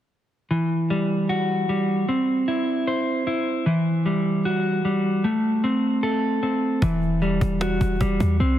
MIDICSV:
0, 0, Header, 1, 4, 480
1, 0, Start_track
1, 0, Key_signature, 1, "minor"
1, 0, Tempo, 394737
1, 614, Time_signature, 4, 2, 24, 8
1, 10442, End_track
2, 0, Start_track
2, 0, Title_t, "Clean electric guitar"
2, 0, Program_c, 0, 27
2, 616, Note_on_c, 0, 52, 91
2, 1098, Note_on_c, 0, 55, 86
2, 1573, Note_on_c, 0, 66, 87
2, 2042, Note_off_c, 0, 55, 0
2, 2056, Note_on_c, 0, 55, 79
2, 2531, Note_off_c, 0, 55, 0
2, 2534, Note_off_c, 0, 66, 0
2, 2535, Note_off_c, 0, 52, 0
2, 2536, Note_on_c, 0, 60, 94
2, 3015, Note_on_c, 0, 64, 86
2, 3495, Note_on_c, 0, 72, 90
2, 3961, Note_off_c, 0, 64, 0
2, 3975, Note_on_c, 0, 64, 89
2, 4452, Note_on_c, 0, 52, 94
2, 4455, Note_off_c, 0, 60, 0
2, 4455, Note_off_c, 0, 64, 0
2, 4455, Note_off_c, 0, 72, 0
2, 4933, Note_on_c, 0, 55, 80
2, 5415, Note_on_c, 0, 66, 94
2, 5881, Note_off_c, 0, 55, 0
2, 5895, Note_on_c, 0, 55, 79
2, 6373, Note_off_c, 0, 52, 0
2, 6374, Note_on_c, 0, 57, 92
2, 6375, Note_off_c, 0, 55, 0
2, 6375, Note_off_c, 0, 66, 0
2, 6856, Note_on_c, 0, 60, 91
2, 7333, Note_on_c, 0, 69, 97
2, 7801, Note_off_c, 0, 60, 0
2, 7815, Note_on_c, 0, 60, 77
2, 8294, Note_off_c, 0, 57, 0
2, 8294, Note_off_c, 0, 69, 0
2, 8295, Note_off_c, 0, 60, 0
2, 8295, Note_on_c, 0, 52, 98
2, 8778, Note_on_c, 0, 55, 86
2, 9254, Note_on_c, 0, 66, 89
2, 9721, Note_off_c, 0, 55, 0
2, 9736, Note_on_c, 0, 55, 84
2, 10211, Note_off_c, 0, 55, 0
2, 10214, Note_off_c, 0, 66, 0
2, 10215, Note_off_c, 0, 52, 0
2, 10216, Note_on_c, 0, 60, 96
2, 10442, Note_off_c, 0, 60, 0
2, 10442, End_track
3, 0, Start_track
3, 0, Title_t, "808-style bass"
3, 0, Program_c, 1, 38
3, 8294, Note_on_c, 1, 28, 114
3, 8985, Note_off_c, 1, 28, 0
3, 9014, Note_on_c, 1, 28, 109
3, 9475, Note_off_c, 1, 28, 0
3, 9495, Note_on_c, 1, 28, 105
3, 9725, Note_off_c, 1, 28, 0
3, 9735, Note_on_c, 1, 28, 104
3, 9965, Note_off_c, 1, 28, 0
3, 9975, Note_on_c, 1, 40, 105
3, 10205, Note_off_c, 1, 40, 0
3, 10214, Note_on_c, 1, 36, 109
3, 10442, Note_off_c, 1, 36, 0
3, 10442, End_track
4, 0, Start_track
4, 0, Title_t, "Cajon"
4, 8294, Note_on_c, 9, 36, 121
4, 8416, Note_off_c, 9, 36, 0
4, 8534, Note_on_c, 9, 38, 45
4, 8655, Note_off_c, 9, 38, 0
4, 8772, Note_on_c, 9, 38, 46
4, 8894, Note_off_c, 9, 38, 0
4, 9014, Note_on_c, 9, 36, 98
4, 9136, Note_off_c, 9, 36, 0
4, 9253, Note_on_c, 9, 38, 103
4, 9258, Note_off_c, 9, 38, 0
4, 9258, Note_on_c, 9, 38, 82
4, 9380, Note_off_c, 9, 38, 0
4, 9495, Note_on_c, 9, 36, 96
4, 9554, Note_on_c, 9, 38, 38
4, 9614, Note_off_c, 9, 38, 0
4, 9614, Note_on_c, 9, 38, 36
4, 9616, Note_off_c, 9, 36, 0
4, 9674, Note_off_c, 9, 38, 0
4, 9674, Note_on_c, 9, 38, 38
4, 9735, Note_on_c, 9, 36, 103
4, 9795, Note_off_c, 9, 38, 0
4, 9857, Note_off_c, 9, 36, 0
4, 9975, Note_on_c, 9, 36, 98
4, 10097, Note_off_c, 9, 36, 0
4, 10213, Note_on_c, 9, 38, 45
4, 10335, Note_off_c, 9, 38, 0
4, 10442, End_track
0, 0, End_of_file